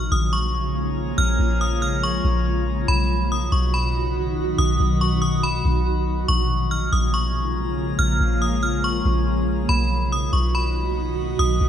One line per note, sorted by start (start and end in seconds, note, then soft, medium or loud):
0.00 2.85 C#3 medium
0.00 2.85 F3 medium
0.00 2.85 G#3 medium
0.00 2.85 A#3 medium
0.00 2.85 F4 medium
0.00 2.85 G#4 medium
0.00 2.85 C#5 medium
0.00 2.85 A#5 medium
0.00 0.11 F6 medium
0.12 1.14 A#1 loud
0.12 0.32 D#6 medium
0.33 0.73 C#6 medium
1.18 1.38 A#1 loud
1.18 1.58 F6 loud
1.39 2.21 A#1 loud
1.61 1.81 D#6 medium
1.82 2.02 F6 medium
2.03 2.43 C#6 medium
2.24 2.86 A#1 loud
2.88 3.50 B1 loud
2.88 6.25 B2 medium
2.88 6.25 D#3 medium
2.88 6.25 F#3 medium
2.88 6.25 D#4 medium
2.88 6.25 F#4 medium
2.88 6.25 D#5 medium
2.88 6.25 B5 medium
2.88 3.28 B5 loud
3.32 3.52 D#6 medium
3.52 4.54 B1 loud
3.52 3.72 C#6 medium
3.74 4.14 B5 medium
4.58 4.79 B1 loud
4.58 4.98 D#6 loud
4.80 5.62 B1 loud
5.01 5.21 C#6 medium
5.22 5.42 D#6 medium
5.43 6.25 B5 medium
5.65 6.26 B1 loud
6.28 6.90 A#1 loud
6.28 9.66 C#3 medium
6.28 9.66 F3 medium
6.28 9.66 G#3 medium
6.28 9.66 A#3 medium
6.28 9.66 F4 medium
6.28 9.66 G#4 medium
6.28 9.66 C#5 medium
6.28 9.66 A#5 medium
6.28 6.69 C#6 loud
6.71 6.91 F6 medium
6.93 7.95 A#1 loud
6.93 7.13 D#6 medium
7.14 7.54 C#6 medium
7.99 8.19 A#1 loud
7.99 8.39 F6 loud
8.20 9.02 A#1 loud
8.42 8.62 D#6 medium
8.63 8.83 F6 medium
8.84 9.24 C#6 medium
9.05 9.67 A#1 loud
9.69 10.30 B1 loud
9.69 11.69 B2 medium
9.69 11.69 D#3 medium
9.69 11.69 F#3 medium
9.69 11.69 D#4 medium
9.69 11.69 F#4 medium
9.69 11.69 D#5 medium
9.69 10.09 B5 loud
9.69 11.69 B5 medium
10.12 10.32 D#6 medium
10.33 11.35 B1 loud
10.33 10.53 C#6 medium
10.55 10.94 B5 medium
11.39 11.60 B1 loud
11.39 11.69 D#6 loud
11.61 11.69 B1 loud